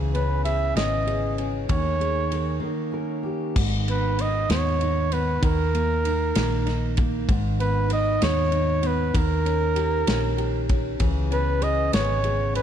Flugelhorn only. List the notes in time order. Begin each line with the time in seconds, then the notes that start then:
0.15 B4
0.45 E5
0.77 D#5
1.71 C#5
3.90 B4
4.21 D#5
4.52 C#5
5.13 B4
5.44 A#4
7.61 B4
7.93 D#5
8.24 C#5
8.87 B4
9.17 A#4
11.33 B4
11.63 D#5
11.94 C#5
12.56 B4